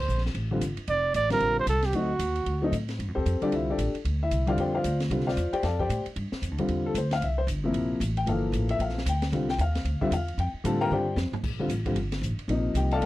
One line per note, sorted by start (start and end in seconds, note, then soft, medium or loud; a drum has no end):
0.00 0.23 C5 medium
0.08 0.34 A#1 medium
0.08 hi-hat pedal medium
0.18 snare soft
0.26 snare soft
0.35 0.60 A1 medium
0.35 ride medium
0.51 0.60 D3 medium
0.51 0.61 G3 medium
0.51 0.61 C4 medium
0.51 0.61 F4 medium
0.61 0.76 G1 medium
0.61 hi-hat pedal medium
0.61 ride medium
0.77 muted upright bass stroke soft
0.77 ride medium
0.87 1.13 F1 medium
0.87 1.13 D5 loud
0.87 ride medium
1.14 1.40 A1 loud
1.14 1.30 D5 loud
1.14 hi-hat pedal medium
1.14 ride medium
1.30 1.65 D3 medium
1.30 1.65 G3 medium
1.30 1.65 C4 medium
1.30 1.66 F4 medium
1.30 1.56 A#4 loud
1.30 snare medium
1.30 ride soft
1.40 1.66 A#1 medium
1.40 ride medium
1.59 1.68 C5 loud
1.67 1.92 C2 loud
1.67 1.87 A4 medium
1.67 hi-hat pedal medium
1.67 ride medium
1.82 1.97 G4 medium
1.82 snare soft
1.82 ride soft
1.93 2.19 D2 medium
1.93 2.08 F#3 medium
1.93 2.08 A3 medium
1.93 2.09 C4 soft
1.93 2.09 D#4 medium
1.93 2.74 F#4 medium
1.93 ride medium
2.19 2.45 D#2 medium
2.19 hi-hat pedal medium
2.19 ride medium
2.35 ride soft
2.46 2.71 D2 medium
2.46 ride medium
2.62 2.71 F#3 medium
2.62 2.72 A3 medium
2.62 2.72 C4 medium
2.62 2.73 D#4 medium
2.72 2.98 A2 medium
2.72 hi-hat pedal medium
2.72 ride medium
2.88 snare soft
2.88 ride soft
2.99 3.08 G2 medium
2.99 ride medium
3.08 3.16 F2 soft
3.15 3.25 D2 medium
3.15 3.40 C4 medium
3.15 3.40 G4 medium
3.15 3.40 A4 medium
3.15 3.40 C5 medium
3.26 3.40 F2 loud
3.26 hi-hat pedal medium
3.26 ride medium
3.41 3.76 D3 medium
3.41 3.76 G3 medium
3.41 3.77 C4 medium
3.41 3.52 D4 medium
3.41 3.77 F4 medium
3.41 3.52 G4 medium
3.41 3.52 A4 medium
3.41 3.52 D5 medium
3.41 muted upright bass stroke soft
3.41 ride soft
3.52 3.78 C2 medium
3.52 3.68 E4 medium
3.52 3.68 E5 medium
3.52 ride medium
3.70 3.94 D4 medium
3.70 3.94 G4 medium
3.70 3.94 A4 medium
3.70 3.94 D5 medium
3.78 3.93 A1 medium
3.78 hi-hat pedal medium
3.78 ride medium
3.95 ride soft
4.05 4.30 D2 medium
4.05 ride medium
4.23 4.47 E4 medium
4.23 4.46 E5 medium
4.31 4.56 C2 medium
4.31 hi-hat pedal medium
4.31 ride medium
4.47 4.82 D3 medium
4.47 4.82 G3 medium
4.47 4.82 C4 medium
4.47 4.74 F4 medium
4.47 4.58 C5 medium
4.47 4.58 D5 medium
4.47 4.58 F5 medium
4.47 ride soft
4.57 4.83 F2 medium
4.57 4.74 G4 medium
4.57 4.73 C5 medium
4.57 4.73 D5 medium
4.57 4.74 G5 medium
4.57 ride medium
4.75 4.99 F4 medium
4.75 4.99 C5 medium
4.75 4.99 D5 medium
4.75 4.99 F5 medium
4.84 5.09 D2 medium
4.84 hi-hat pedal medium
4.84 ride medium
5.00 snare medium
5.00 ride soft
5.10 5.36 C2 medium
5.10 5.25 D3 medium
5.10 5.25 G3 medium
5.10 5.26 C4 medium
5.10 5.26 F4 medium
5.10 ride medium
5.20 snare soft
5.27 5.52 F4 medium
5.27 5.52 C5 medium
5.27 5.52 D5 medium
5.27 5.51 F5 medium
5.27 snare soft
5.37 5.52 E2 medium
5.37 hi-hat pedal medium
5.37 ride medium
5.53 5.63 G4 medium
5.53 5.63 C5 medium
5.53 5.62 D5 medium
5.53 5.63 G5 loud
5.53 muted upright bass stroke soft
5.53 ride soft
5.63 5.89 F2 medium
5.63 5.79 A4 medium
5.63 5.79 D5 medium
5.63 5.79 F5 medium
5.63 5.79 A5 medium
5.63 snare soft
5.63 ride medium
5.79 6.04 G4 medium
5.79 6.04 C5 medium
5.79 6.04 D5 medium
5.79 6.04 G5 medium
5.79 kick medium
5.89 6.04 A2 medium
5.89 hi-hat pedal medium
5.89 ride medium
6.06 muted upright bass stroke soft
6.06 ride medium
6.16 6.31 G2 medium
6.16 ride medium
6.32 muted upright bass stroke soft
6.32 snare medium
6.42 6.51 F2 medium
6.42 hi-hat pedal medium
6.42 ride medium
6.51 6.59 D2 medium
6.58 6.68 C2 medium
6.58 6.93 D3 medium
6.58 6.94 G3 medium
6.58 6.94 C4 medium
6.58 6.94 F4 medium
6.58 ride soft
6.68 6.94 E2 medium
6.68 ride medium
6.86 6.96 A4 medium
6.94 7.20 D2 medium
6.94 7.12 C5 medium
6.94 hi-hat pedal medium
6.94 ride medium
7.11 7.22 F5 loud
7.11 snare medium
7.11 ride soft
7.21 7.46 C2 medium
7.21 7.38 E5 medium
7.21 ride medium
7.38 7.44 C5 medium
7.47 7.73 G1 loud
7.47 hi-hat pedal medium
7.47 ride medium
7.64 7.99 C3 medium
7.64 7.99 F3 medium
7.64 7.99 A#3 medium
7.64 8.00 E4 medium
7.73 7.99 A#1 medium
7.73 ride medium
8.00 8.26 A1 loud
8.00 hi-hat pedal medium
8.00 ride medium
8.17 8.27 G5 loud
8.17 ride soft
8.26 8.52 G1 medium
8.26 9.00 E3 medium
8.26 9.00 F3 medium
8.26 9.00 A#3 medium
8.26 9.01 A4 medium
8.26 8.68 F5 medium
8.26 ride medium
8.52 8.78 A1 loud
8.52 hi-hat pedal medium
8.52 ride medium
8.69 8.80 E5 loud
8.69 ride medium
8.79 9.05 A#1 medium
8.79 9.05 F5 medium
8.79 ride medium
8.89 snare soft
8.98 snare soft
9.06 9.31 D2 loud
9.06 9.23 G5 medium
9.06 hi-hat pedal medium
9.06 ride medium
9.22 snare medium
9.22 ride medium
9.32 9.58 C2 medium
9.32 9.47 D3 medium
9.32 9.47 G3 medium
9.32 9.48 C4 medium
9.32 9.48 F4 medium
9.32 ride medium
9.49 9.59 G5 loud
9.49 snare medium
9.58 9.84 D#2 loud
9.58 9.99 F5 medium
9.58 hi-hat pedal medium
9.58 ride medium
9.75 snare medium
9.75 ride soft
9.84 10.00 D2 medium
9.84 ride medium
10.01 10.11 D3 medium
10.01 10.11 G3 medium
10.01 10.11 C4 medium
10.01 10.12 F4 medium
10.01 10.11 E5 medium
10.01 muted upright bass stroke soft
10.01 kick medium
10.11 10.37 E2 medium
10.11 10.37 F5 medium
10.11 hi-hat pedal medium
10.11 ride medium
10.28 ride soft
10.38 10.53 F2 medium
10.38 10.49 G5 medium
10.38 ride medium
10.54 muted upright bass stroke soft
10.64 10.90 A2 loud
10.64 11.03 D3 medium
10.64 11.04 G3 medium
10.64 11.04 C4 medium
10.64 11.04 F4 medium
10.64 10.81 A4 medium
10.64 10.81 A5 medium
10.64 hi-hat pedal medium
10.64 ride medium
10.81 10.91 A#4 medium
10.81 10.91 F5 medium
10.81 10.91 G5 loud
10.81 10.91 A#5 loud
10.91 11.16 G2 medium
10.91 11.16 G4 medium
10.91 11.16 C5 medium
10.91 11.16 D5 medium
10.91 11.16 G5 medium
10.91 mid tom medium
11.16 11.31 F2 medium
11.16 snare medium
11.16 hi-hat pedal medium
11.32 muted upright bass stroke soft
11.32 floor tom medium
11.44 11.68 A#1 medium
11.44 kick medium
11.44 crash medium
11.59 11.69 D3 medium
11.59 11.69 G3 medium
11.59 11.69 C4 medium
11.59 11.70 F4 medium
11.69 11.95 A1 medium
11.69 hi-hat pedal medium
11.69 ride medium
11.86 11.95 D3 medium
11.86 11.95 G3 medium
11.86 11.95 C4 medium
11.86 11.96 F4 medium
11.86 kick medium
11.86 ride soft
11.95 12.21 G1 medium
11.95 ride medium
12.12 snare medium
12.12 ride medium
12.22 12.37 A1 medium
12.22 hi-hat pedal medium
12.39 ride soft
12.48 12.74 A#1 medium
12.48 13.06 C3 medium
12.48 13.06 F3 medium
12.48 13.06 A#3 medium
12.48 13.06 D#4 medium
12.48 ride medium
12.74 13.00 C2 medium
12.74 12.91 G4 medium
12.74 12.91 G5 medium
12.74 hi-hat pedal medium
12.74 ride medium
12.91 13.02 A4 medium
12.91 13.02 D5 medium
12.91 13.02 F5 loud
12.91 13.02 A5 loud
12.91 ride soft
13.01 13.06 D2 medium
13.01 ride medium